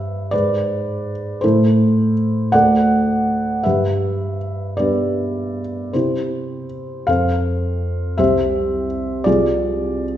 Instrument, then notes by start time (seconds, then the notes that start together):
felt piano
Already playing: G2 G4 B4 E5
0.31 G#2 B4 D5
1.41 A2 E4 A4 C5
2.52 D2 A4 D5 F#5
3.63 G2 G4 B4 E5
4.77 G3 B3 D4 G4 B4 D5
5.93 C3 E4 G4 C5
7.07 F2 A4 C5 F5
8.18 C2 G4 C5 E5
9.24 C2 F4 G#4 D5